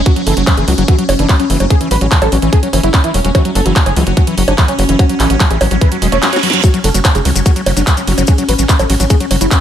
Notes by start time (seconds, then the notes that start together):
Already playing: C#4
0.06 F#3 F#4, kick, closed hi-hat
0.16 F#3, closed hi-hat
0.27 F#1 E3 A4, open hi-hat
0.37 F#1 F#3, closed hi-hat
0.47 F#3, kick, clap, closed hi-hat, high bongo
0.57 F#1 E3 G#4, closed hi-hat
0.68 C#2 F#3, open hi-hat
0.78 F#1 F#3, closed hi-hat
0.88 E3 F#4, kick, closed hi-hat
0.98 F#3, closed hi-hat
1.09 F#1 F#3, open hi-hat, high bongo
1.19 F#1 E3 D4, closed hi-hat
1.29 F#3, kick, clap, closed hi-hat
1.40 F#3 C#4, closed hi-hat
1.50 F#1 E3 F#3, open hi-hat
1.60 F#1 F#3, closed hi-hat, high bongo
1.70 F#3 G#4, kick, closed hi-hat
1.81 E3 C#4, closed hi-hat
1.91 A1 F#3 B4, open hi-hat
2.01 A1 F#3 C#4, closed hi-hat
2.12 E3 C#4, kick, clap, closed hi-hat
2.22 A1 F#3 A4, closed hi-hat, high bongo
2.32 A1 F#3 C#4, open hi-hat
2.42 A1 E3 C#4, closed hi-hat
2.53 F#3 G#4, kick, closed hi-hat
2.63 F#3 C#4, closed hi-hat
2.73 F#1 E3 C#4, open hi-hat, high bongo
2.83 F#1 F#3 E4, closed hi-hat
2.94 F#3 C#4, kick, clap, closed hi-hat
3.04 E3 E4, closed hi-hat
3.14 E1 F#3 C#4, open hi-hat
3.25 E1 F#3 C#4, closed hi-hat
3.35 E3 F#4, kick, closed hi-hat, high bongo
3.45 F#3, closed hi-hat
3.55 F#1 F#3 A4, open hi-hat
3.66 F#1 E3 F#3, closed hi-hat
3.76 F#3, kick, clap, closed hi-hat
3.86 F#1 F#3 G#4, closed hi-hat, high bongo
3.96 C#2 E3 F#3, open hi-hat
4.07 F#1 F#3, closed hi-hat
4.17 F#3 F#4, kick, closed hi-hat
4.27 E3 F#3, closed hi-hat
4.38 F#1 F#3, open hi-hat
4.48 F#1 F#3 D4, closed hi-hat, high bongo
4.58 E3 F#3, kick, clap, closed hi-hat
4.68 F#3 C#4, closed hi-hat
4.79 F#1 F#3, open hi-hat
4.89 F#1 E3 F#3, closed hi-hat
4.99 F#3 F#4, kick, closed hi-hat, high bongo
5.09 F#3, closed hi-hat
5.20 A1 E3 A4, clap, open hi-hat
5.30 A1 F#3, closed hi-hat
5.40 F#3, kick, clap, closed hi-hat
5.51 A1 E3 G#4, closed hi-hat
5.61 A1 F#3, open hi-hat, high bongo
5.71 A1 F#3, closed hi-hat
5.81 E3 B4, kick, closed hi-hat, reverse cymbal
5.92 F#3, closed hi-hat
6.02 E1 F#3 G#3, open hi-hat
6.12 E1 A3 C#5, closed hi-hat, high bongo
6.22 F#3, snare, clap, closed hi-hat
6.33 F#4 C#5, snare, closed hi-hat
6.43 F#3, open hi-hat
6.50 F#3, snare, closed hi-hat
6.64 F#3 C#4 F#4, kick, closed hi-hat, ride, maracas
6.74 F#3, closed hi-hat, maracas
6.84 F#1 F#3 A4, open hi-hat, ride
6.94 F#1 F#3, closed hi-hat, maracas
7.04 F#3, kick, clap, closed hi-hat, ride, high bongo, maracas
7.15 F#1 F#3 G#4, closed hi-hat, maracas
7.25 C#2 F#3, open hi-hat, ride
7.36 F#1 F#3, closed hi-hat, maracas
7.46 F#3 F#4, kick, closed hi-hat, ride, maracas
7.56 F#3, closed hi-hat, maracas
7.66 F#1 F#3, open hi-hat, ride, high bongo
7.77 F#1 F#3 D4, closed hi-hat, maracas
7.87 F#3, kick, clap, closed hi-hat, ride, maracas
7.97 F#3 C#4, closed hi-hat, maracas
8.07 F#1 F#3, open hi-hat, ride
8.18 F#1 F#3, closed hi-hat, high bongo, maracas
8.27 F#3 G#4, kick, closed hi-hat, ride, maracas
8.38 F#3 C#4, closed hi-hat, maracas
8.49 A1 F#3 B4, open hi-hat, ride
8.59 A1 F#3 C#4, closed hi-hat, maracas
8.69 F#3 C#4, kick, clap, closed hi-hat, ride, maracas
8.79 A1 F#3 A4, closed hi-hat, high bongo, maracas
8.90 A1 F#3 C#4, open hi-hat, ride
9.00 A1 F#3 C#4, closed hi-hat, maracas
9.10 F#3 G#4, kick, closed hi-hat, ride, maracas
9.20 F#3 C#4, closed hi-hat, maracas
9.31 F#1 F#3 C#4, open hi-hat, ride, high bongo
9.41 F#1 F#3 E4, closed hi-hat, maracas
9.51 F#3 C#4, kick, clap, closed hi-hat, ride, maracas